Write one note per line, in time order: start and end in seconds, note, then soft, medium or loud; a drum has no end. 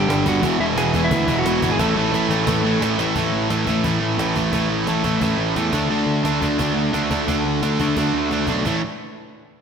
0.00 0.45 D4 loud
0.00 0.24 G4 medium
0.00 0.28 G5 medium
0.08 0.23 G1 medium
0.08 0.24 G2 medium
0.08 0.25 D3 loud
0.08 0.25 G3 loud
0.08 cajon slap loud
0.25 0.41 G1 medium
0.25 0.42 G2 medium
0.25 0.42 D3 medium
0.25 0.42 G3 loud
0.25 0.59 F#4 medium
0.25 0.62 F#5 medium
0.25 cajon bass loud
0.42 0.57 E1 medium
0.42 0.60 E2 loud
0.42 0.59 B2 loud
0.42 0.60 E3 loud
0.42 cajon bass loud
0.60 0.75 E1 medium
0.60 0.76 E2 medium
0.60 0.76 B2 medium
0.60 0.78 E3 loud
0.60 0.65 E4 medium
0.60 0.65 E5 medium
0.77 0.92 E1 loud
0.77 0.94 E2 medium
0.77 0.94 B2 medium
0.77 0.94 E3 medium
0.77 1.01 G#4 medium
0.77 1.04 G#5 loud
0.77 cajon slap loud
0.94 1.09 E1 loud
0.94 1.11 E2 medium
0.94 1.11 B2 loud
0.94 1.12 E3 loud
0.94 cajon bass medium
1.04 1.35 E4 medium
1.04 1.38 E5 medium
1.11 1.26 D2 loud
1.11 1.29 E2 medium
1.11 1.28 B2 medium
1.11 1.28 E3 loud
1.11 cajon bass loud
1.28 1.43 E1 medium
1.28 1.45 E2 medium
1.28 1.46 B2 medium
1.28 1.47 E3 loud
1.28 cajon bass loud
1.39 1.70 F#4 medium
1.39 1.70 F#5 medium
1.45 1.60 E1 loud
1.45 1.63 E2 loud
1.45 1.63 B2 loud
1.45 1.63 E3 loud
1.45 cajon slap loud
1.62 1.77 G#1 loud
1.62 1.79 E2 medium
1.62 1.79 B2 medium
1.62 1.80 E3 medium
1.62 cajon bass loud
1.72 1.79 G#4 medium
1.72 1.80 G#5 medium
1.79 1.94 A1 medium
1.79 1.97 A2 loud
1.79 1.96 E3 medium
1.79 1.95 A3 loud
1.79 2.78 A4 medium
1.79 2.82 A5 medium
1.79 cajon bass loud
1.79 cajon slap medium
1.96 2.11 A1 medium
1.96 2.12 A2 medium
1.96 2.13 E3 loud
1.96 2.14 A3 loud
2.13 2.28 A1 loud
2.13 2.31 A2 medium
2.13 2.30 E3 loud
2.13 2.29 A3 medium
2.13 cajon slap medium
2.29 2.44 A1 loud
2.29 2.45 A2 medium
2.29 2.46 E3 loud
2.29 2.47 A3 loud
2.29 cajon slap medium
2.46 2.62 A1 loud
2.46 2.65 A2 medium
2.46 2.64 E3 loud
2.46 2.63 A3 loud
2.46 cajon bass loud
2.46 cajon slap medium
2.64 2.79 A1 loud
2.64 2.80 A2 medium
2.64 2.81 E3 medium
2.64 2.81 A3 loud
2.81 2.96 A1 medium
2.81 2.99 A2 loud
2.81 2.98 E3 loud
2.81 2.98 A3 loud
2.81 cajon slap loud
2.99 3.13 A1 medium
2.99 3.15 A2 medium
2.99 3.15 E3 medium
2.99 3.15 A3 loud
2.99 cajon slap loud
3.16 3.31 A1 medium
3.16 3.50 A2 medium
3.16 3.51 E3 loud
3.16 3.51 A3 medium
3.16 cajon bass loud
3.33 3.48 A1 medium
3.50 3.66 A1 medium
3.50 3.68 A2 medium
3.50 3.68 E3 medium
3.50 3.68 A3 medium
3.50 cajon slap loud
3.67 3.82 A1 medium
3.67 3.84 A2 medium
3.67 3.85 E3 medium
3.67 3.86 A3 medium
3.67 cajon bass medium
3.84 4.00 A1 medium
3.84 4.17 A2 loud
3.84 4.18 E3 medium
3.84 4.20 A3 loud
3.84 cajon bass loud
4.01 4.17 A1 medium
4.18 4.34 A1 medium
4.18 4.37 A2 medium
4.18 4.36 E3 medium
4.18 4.36 A3 medium
4.18 cajon slap loud
4.36 4.51 A1 medium
4.36 4.52 A2 medium
4.36 4.53 E3 medium
4.36 4.54 A3 medium
4.36 cajon bass medium
4.53 4.68 A1 medium
4.53 4.87 A2 medium
4.53 4.88 E3 medium
4.53 4.89 A3 medium
4.53 cajon bass loud
4.70 4.85 A1 medium
4.87 5.02 A1 medium
4.87 5.05 A2 medium
4.87 5.04 E3 medium
4.87 5.05 A3 medium
4.87 cajon slap loud
5.04 5.20 A1 medium
5.04 5.21 A2 medium
5.04 5.21 E3 medium
5.04 5.23 A3 medium
5.04 cajon bass medium
5.21 5.37 A1 medium
5.21 5.55 A2 medium
5.21 5.56 E3 medium
5.21 5.57 A3 loud
5.21 cajon bass loud
5.38 5.54 A1 medium
5.56 5.71 E2 medium
5.56 5.72 A2 medium
5.56 5.73 E3 medium
5.56 5.74 A3 medium
5.56 cajon slap loud
5.73 5.88 D2 medium
5.73 5.92 D3 medium
5.73 5.91 A3 loud
5.73 5.90 D4 loud
5.73 cajon bass loud
5.90 6.05 D2 medium
5.90 6.26 D3 medium
5.90 6.25 A3 medium
5.90 6.24 D4 loud
6.06 6.22 D2 medium
6.24 6.40 D2 medium
6.24 6.40 D3 medium
6.24 6.42 A3 medium
6.24 6.42 D4 medium
6.24 cajon slap loud
6.41 6.57 D2 medium
6.41 6.59 D3 medium
6.41 6.59 A3 medium
6.41 6.58 D4 medium
6.41 cajon bass medium
6.59 6.74 D2 medium
6.59 6.93 D3 medium
6.59 6.93 A3 medium
6.59 6.92 D4 medium
6.59 cajon bass loud
6.75 6.91 D2 medium
6.92 7.08 D2 medium
6.92 7.10 D3 medium
6.92 7.11 A3 medium
6.92 7.11 D4 medium
6.92 cajon slap loud
7.10 7.26 D2 medium
7.10 7.28 D3 medium
7.10 7.28 A3 medium
7.10 7.27 D4 medium
7.10 cajon bass medium
7.28 7.43 D2 medium
7.28 7.63 D3 medium
7.28 7.62 A3 medium
7.28 7.61 D4 loud
7.28 cajon bass medium
7.46 7.61 D2 medium
7.62 7.78 D2 medium
7.62 7.79 D3 medium
7.62 7.80 A3 medium
7.62 7.80 D4 medium
7.62 cajon slap loud
7.79 7.95 D2 medium
7.79 7.98 D3 medium
7.79 7.97 A3 medium
7.79 7.96 D4 medium
7.79 cajon bass medium
7.96 8.12 D2 medium
7.96 8.31 D3 medium
7.96 8.31 A3 medium
7.96 8.30 D4 loud
7.96 cajon bass loud
8.14 8.29 D2 medium
8.30 8.46 D2 medium
8.30 8.48 D3 medium
8.30 8.48 A3 medium
8.30 8.49 D4 medium
8.30 cajon slap medium
8.47 8.64 B1 medium
8.47 8.65 D3 medium
8.47 8.65 A3 medium
8.47 8.65 D4 medium
8.47 cajon bass medium
8.65 8.82 A1 medium
8.65 8.80 A2 medium
8.65 8.80 E3 medium
8.65 8.80 A3 medium
8.65 cajon bass medium